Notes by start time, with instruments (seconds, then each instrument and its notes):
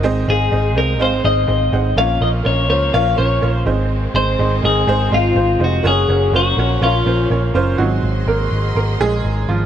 Already playing: string section D#4
0.03 picked electric bass G#1, upright piano G#2 C4 D#4 G#4 C5 D#5, string section G#3 C4
0.27 picked electric bass G#1, upright piano C4 D#4 G#4 C5 F5, clean electric guitar G#4
0.51 picked electric bass G#1, upright piano C4 D#4 G#4 C5 D#5
0.75 picked electric bass C2, upright piano C4 D#4 G#4 C5 D#5, clean electric guitar A#4
0.99 picked electric bass G#1, upright piano C4 D#4 G#4 C5 F5, clean electric guitar C5
1.24 picked electric bass G#1, upright piano C4 D#4 G#4 C5 D#5, clean electric guitar D#5
1.47 picked electric bass G#1, upright piano C4 D#4 G#4 C5 D#5
1.72 picked electric bass G#1, upright piano C4 D#4 G#4 C5 F#5
1.96 picked electric bass A#1, upright piano A#2 A#3 C#4 F4 A#4 C#5, string section F3 A#3 C#4, clean electric guitar F5
2.21 picked electric bass A#1, upright piano A#3 C#4 F4 A#4 D#5, clean electric guitar D#5
2.43 picked electric bass A#1, upright piano A#3 C#4 F4 A#4 C#5, clean electric guitar C#5
2.69 picked electric bass C#2, upright piano A#3 C#4 F4 A#4 C5, clean electric guitar C#5
2.93 picked electric bass A#1, upright piano A#3 C#4 F4 A#4 C#5, clean electric guitar F5
3.17 picked electric bass A#1, upright piano A#3 C#4 F4 A#4 C5, clean electric guitar C#5
3.41 picked electric bass A#1, upright piano A#3 C#4 F4 A#4 C#5
3.52 clean electric guitar C5
3.66 picked electric bass G#1, upright piano G#2 G#3 C4 D#4 G#4 C5, string section D#3 G#3 C4
4.14 picked electric bass G#1, upright piano G#3 C4 D#4 G#4 C5, clean electric guitar C5
4.38 picked electric bass G#1, upright piano G#3 C4 D#4 G#4 D#5
4.63 picked electric bass G#1, upright piano G#3 C4 D#4 G#4 A#4, clean electric guitar G#4
4.87 picked electric bass G#1, upright piano G#3 C4 D#4 G#4 C5
5.11 picked electric bass G#1, upright piano G#3 C4 D#4 G#4 D#5, clean electric guitar F4
5.35 picked electric bass G#1, upright piano G#3 C4 D#4 G#4 C5
5.59 picked electric bass F1, upright piano G#3 C4 D#4 G#4 C5
5.64 clean electric guitar F#4
5.83 picked electric bass F#1, string section F#3 A#3 C#4, upright piano A#3 C#4 F#4 A#4 C#5
5.87 clean electric guitar G#4
6.08 picked electric bass F#1, upright piano A#3 C#4 F#4 A#4 C#5
6.32 picked electric bass F#1, upright piano A#3 C#4 F#4 A#4 C5
6.36 clean electric guitar F#4
6.57 picked electric bass A#1, upright piano A#3 C#4 F#4 A#4 C#5
6.81 picked electric bass A#1, upright piano A#2 A#3 C#4 F4 A#4 C#5, string section F3, clean electric guitar F4
7.06 picked electric bass A#1, upright piano A#3 C#4 F4 A#4 C5
7.30 picked electric bass A#1, upright piano A#3 C#4 F4 A#4 C#5
7.54 picked electric bass F#1, upright piano A#3 C#4 F4 A#4 C5
7.76 picked electric bass G#1, upright piano D#3 F#3 G#3 C4 F#4, string section G#4 C5 D#5 C6
8.03 picked electric bass G#1
8.27 picked electric bass G#1, upright piano A#3 A#4
8.51 picked electric bass G#1
8.75 picked electric bass G#1, upright piano A#3 A#4
9.00 picked electric bass A#1, upright piano G#3 G#4
9.25 picked electric bass G#1
9.48 picked electric bass G#1, upright piano F3 F4